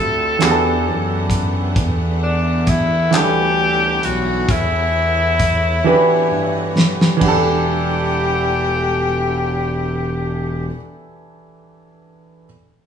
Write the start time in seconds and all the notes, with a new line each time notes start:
Already playing: D2 D3 G3 A3 C4 E4 F4 G4 A4 E5
0.39 E2 E3 A3 B3 D4 F#4 F#5, clap, closed hi-hat
0.43 G4 G#4
0.51 A4
0.86 F#2
1.30 kick, closed hi-hat
1.76 E2, kick, closed hi-hat
2.23 D4
2.67 E4, kick, closed hi-hat
3.11 D2 E3 D4 G4 C#5 F#5, clap, closed hi-hat
3.15 G3 A4
4.03 B1 F#4, closed hi-hat
4.49 E2 E4, kick, closed hi-hat
5.40 kick, closed hi-hat
5.84 G2 E3 D4 F#4 G4 B4
6.31 G2
6.78 snare
7.01 snare
7.17 E3 D4
7.21 E1 E3 G3 A3 D4 G4 F#5, kick, crash
7.28 A4